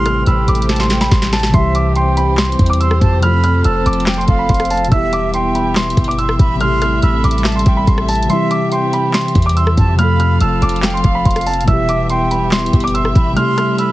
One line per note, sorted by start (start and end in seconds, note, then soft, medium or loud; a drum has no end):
0.00 0.24 A1 loud
0.00 1.48 C3 medium
0.00 1.50 E3 medium
0.00 1.49 G3 medium
0.00 1.50 A3 medium
0.00 1.52 A3 medium
0.00 1.52 C4 medium
0.00 1.51 E4 medium
0.00 1.52 G4 medium
0.00 0.24 C6 loud
0.06 0.23 F6 medium
0.06 cross-stick medium
0.06 closed hi-hat medium
0.26 0.47 A1 loud
0.26 0.67 B5 medium
0.26 0.44 E6 medium
0.26 closed hi-hat medium
0.48 1.09 A1 loud
0.48 0.78 D6 medium
0.48 closed hi-hat medium
0.55 closed hi-hat medium
0.62 closed hi-hat medium
0.69 0.89 A5 medium
0.69 snare medium
0.69 closed hi-hat medium
0.76 0.97 C6 medium
0.76 snare medium
0.76 closed hi-hat medium
0.83 closed hi-hat medium
0.90 1.10 G5 medium
0.90 snare medium
0.90 closed hi-hat medium
1.01 1.09 B5 medium
1.01 snare medium
1.11 1.52 A1 loud
1.11 1.28 C6 medium
1.11 kick loud
1.11 snare loud
1.11 closed hi-hat medium
1.22 snare medium
1.33 1.49 A5 medium
1.33 snare loud
1.33 closed hi-hat soft
1.33 open hi-hat medium
1.40 snare loud
1.40 closed hi-hat medium
1.47 3.17 C3 medium
1.47 closed hi-hat medium
1.51 2.55 C2 loud
1.51 3.18 E3 medium
1.51 3.21 E3 medium
1.51 3.19 G3 medium
1.51 4.88 C4 medium
1.51 3.21 G4 medium
1.51 4.88 C5 medium
1.51 1.93 E5 loud
1.51 1.70 C6 medium
1.51 kick loud
1.51 closed hi-hat medium
1.56 3.20 E4 medium
1.56 3.22 G4 medium
1.75 1.92 D6 medium
1.75 closed hi-hat medium
1.96 2.36 G5 medium
1.96 2.13 C6 medium
1.96 closed hi-hat medium
2.17 2.34 B5 medium
2.17 closed hi-hat medium
2.37 2.68 C6 medium
2.37 snare loud
2.37 clap medium
2.37 closed hi-hat soft
2.45 closed hi-hat medium
2.52 closed hi-hat medium
2.59 3.00 E2 loud
2.59 kick medium
2.59 closed hi-hat medium
2.66 2.78 D6 medium
2.66 closed hi-hat medium
2.73 closed hi-hat medium
2.80 3.00 C6 medium
2.80 2.97 E6 medium
2.80 closed hi-hat medium
2.91 cross-stick loud
3.01 3.62 F2 loud
3.01 3.22 A5 medium
3.01 kick loud
3.01 closed hi-hat medium
3.18 4.86 C3 medium
3.18 4.87 F3 medium
3.23 4.90 F3 medium
3.23 4.88 A3 medium
3.23 4.90 F4 medium
3.23 4.90 A4 medium
3.23 3.62 B5 loud
3.23 3.40 F6 medium
3.23 closed hi-hat medium
3.28 4.91 A4 medium
3.44 3.61 F6 medium
3.44 closed hi-hat medium
3.64 3.85 F1 loud
3.64 4.05 A5 medium
3.64 3.82 E6 medium
3.64 closed hi-hat medium
3.86 4.27 F1 loud
3.86 4.16 D6 medium
3.86 closed hi-hat loud
3.93 closed hi-hat medium
4.00 closed hi-hat medium
4.06 4.27 G5 medium
4.06 snare loud
4.06 clap medium
4.06 closed hi-hat medium
4.14 4.35 C6 medium
4.14 closed hi-hat medium
4.21 closed hi-hat soft
4.28 4.49 F1 loud
4.28 4.88 F5 medium
4.28 kick medium
4.28 closed hi-hat medium
4.39 4.47 B5 medium
4.49 4.90 F1 loud
4.49 4.66 C6 medium
4.49 kick medium
4.49 closed hi-hat medium
4.54 closed hi-hat medium
4.60 cross-stick medium
4.60 closed hi-hat medium
4.65 closed hi-hat medium
4.70 4.87 A5 medium
4.70 closed hi-hat soft
4.70 open hi-hat medium
4.77 closed hi-hat medium
4.85 6.55 B2 medium
4.85 closed hi-hat medium
4.89 5.93 E1 loud
4.89 6.56 E3 medium
4.89 6.59 E3 medium
4.89 6.56 G3 medium
4.89 6.59 B3 medium
4.89 6.59 G4 medium
4.89 5.31 E5 loud
4.89 9.95 E5 medium
4.89 5.08 E6 medium
4.89 kick loud
4.89 closed hi-hat medium
4.94 6.58 E4 medium
4.94 6.60 G4 medium
5.13 5.30 D6 medium
5.13 closed hi-hat medium
5.34 5.74 G5 medium
5.34 5.51 C6 medium
5.34 closed hi-hat medium
5.55 5.72 B5 medium
5.55 closed hi-hat medium
5.75 6.06 C6 medium
5.75 snare loud
5.75 clap medium
5.75 closed hi-hat soft
5.83 closed hi-hat medium
5.90 closed hi-hat medium
5.97 6.38 G1 loud
5.97 kick medium
5.97 closed hi-hat medium
6.04 6.16 D6 medium
6.04 closed hi-hat medium
6.11 closed hi-hat medium
6.18 6.38 C6 medium
6.18 6.35 E6 medium
6.18 closed hi-hat medium
6.29 cross-stick loud
6.39 7.00 A1 loud
6.39 6.59 B5 medium
6.39 kick loud
6.39 closed hi-hat medium
6.55 8.23 C3 medium
6.55 8.25 G3 medium
6.60 8.28 G3 medium
6.60 8.26 A3 medium
6.60 11.64 C4 medium
6.60 8.27 E4 medium
6.60 8.28 A4 medium
6.60 7.00 C6 loud
6.60 6.78 F6 medium
6.60 closed hi-hat medium
6.65 8.28 G4 medium
6.82 6.99 F6 medium
6.82 cross-stick medium
6.82 closed hi-hat medium
7.02 7.23 A1 loud
7.02 7.43 B5 medium
7.02 7.20 E6 medium
7.02 closed hi-hat medium
7.24 7.65 A1 loud
7.24 7.54 D6 medium
7.24 closed hi-hat medium
7.31 closed hi-hat medium
7.38 closed hi-hat medium
7.44 7.65 A5 medium
7.44 snare loud
7.44 clap medium
7.44 closed hi-hat medium
7.52 7.72 C6 medium
7.52 closed hi-hat medium
7.59 closed hi-hat medium
7.66 7.87 A1 loud
7.66 7.86 G5 medium
7.66 kick medium
7.66 closed hi-hat medium
7.77 7.85 B5 medium
7.87 8.28 A1 loud
7.87 8.04 C6 medium
7.87 kick medium
7.87 closed hi-hat medium
7.98 cross-stick loud
8.09 8.25 A5 medium
8.09 closed hi-hat soft
8.09 open hi-hat medium
8.15 closed hi-hat medium
8.23 9.93 C3 medium
8.23 closed hi-hat medium
8.27 9.94 E3 medium
8.27 9.97 E3 medium
8.27 9.95 G3 medium
8.27 9.97 G4 medium
8.27 8.69 E5 loud
8.27 8.47 C6 medium
8.27 closed hi-hat medium
8.32 9.97 E4 medium
8.32 9.98 G4 medium
8.51 8.68 D6 medium
8.51 closed hi-hat medium
8.72 9.12 G5 medium
8.72 8.89 C6 medium
8.72 closed hi-hat medium
8.93 9.10 B5 medium
8.93 closed hi-hat medium
9.13 9.44 C6 medium
9.13 snare loud
9.13 clap medium
9.13 closed hi-hat soft
9.21 closed hi-hat medium
9.28 closed hi-hat medium
9.35 9.76 E2 loud
9.35 kick loud
9.35 closed hi-hat medium
9.42 9.54 D6 medium
9.42 closed hi-hat medium
9.49 closed hi-hat medium
9.56 9.76 C6 loud
9.56 9.73 E6 medium
9.56 closed hi-hat medium
9.67 cross-stick loud
9.77 10.38 F2 loud
9.77 9.98 A5 medium
9.77 kick loud
9.77 closed hi-hat medium
9.94 11.62 C3 medium
9.94 11.63 F3 medium
9.99 11.66 F3 medium
9.99 11.64 A3 medium
9.99 11.66 F4 medium
9.99 11.66 A4 medium
9.99 11.66 F5 medium
9.99 10.39 B5 loud
9.99 10.16 F6 loud
9.99 closed hi-hat medium
10.04 11.67 A4 medium
10.20 10.37 F6 medium
10.20 closed hi-hat medium
10.40 10.61 F1 loud
10.40 10.81 A5 medium
10.40 10.58 E6 medium
10.40 closed hi-hat medium
10.62 11.03 F1 loud
10.62 10.92 D6 medium
10.62 closed hi-hat medium
10.69 closed hi-hat medium
10.76 closed hi-hat medium
10.82 11.03 G5 medium
10.82 snare loud
10.82 clap medium
10.82 closed hi-hat medium
10.90 11.11 C6 medium
10.90 closed hi-hat medium
10.97 closed hi-hat soft
11.04 11.25 F1 loud
11.04 11.64 F5 medium
11.04 kick loud
11.04 closed hi-hat medium
11.15 11.23 B5 medium
11.25 11.66 F1 loud
11.25 11.42 C6 medium
11.25 kick medium
11.25 closed hi-hat medium
11.31 closed hi-hat medium
11.36 cross-stick medium
11.36 closed hi-hat medium
11.41 closed hi-hat medium
11.46 11.63 A5 medium
11.46 closed hi-hat soft
11.46 open hi-hat medium
11.54 closed hi-hat medium
11.61 13.31 B2 medium
11.61 closed hi-hat medium
11.65 12.69 E1 loud
11.65 13.32 E3 medium
11.65 13.35 E3 medium
11.65 13.32 G3 medium
11.65 13.35 B3 medium
11.65 13.35 G4 medium
11.65 12.07 E5 loud
11.65 13.92 E5 medium
11.65 11.84 E6 medium
11.65 kick loud
11.65 closed hi-hat medium
11.70 13.35 E4 medium
11.70 13.36 G4 medium
11.89 12.06 D6 medium
11.89 closed hi-hat medium
12.10 12.50 G5 medium
12.10 12.27 C6 medium
12.10 closed hi-hat medium
12.31 12.48 B5 medium
12.31 closed hi-hat medium
12.51 12.82 C6 medium
12.51 snare loud
12.51 clap medium
12.51 closed hi-hat medium
12.59 closed hi-hat medium
12.66 closed hi-hat medium
12.73 13.14 G1 loud
12.73 kick medium
12.73 closed hi-hat medium
12.80 12.92 D6 medium
12.80 closed hi-hat medium
12.87 closed hi-hat medium
12.94 13.14 C6 medium
12.94 13.11 E6 medium
12.94 closed hi-hat medium
13.05 cross-stick medium
13.15 13.36 A1 loud
13.15 13.35 B5 medium
13.15 kick loud
13.15 closed hi-hat medium
13.31 13.92 C3 medium
13.31 13.92 G3 medium
13.36 13.92 G3 medium
13.36 13.92 A3 medium
13.36 13.92 C4 medium
13.36 13.92 E4 medium
13.36 13.92 A4 medium
13.36 13.76 C6 loud
13.36 13.53 F6 medium
13.36 closed hi-hat medium
13.41 13.92 G4 medium
13.58 13.75 F6 medium
13.58 cross-stick medium
13.58 closed hi-hat medium
13.79 13.92 B5 medium
13.79 13.92 E6 medium
13.79 closed hi-hat medium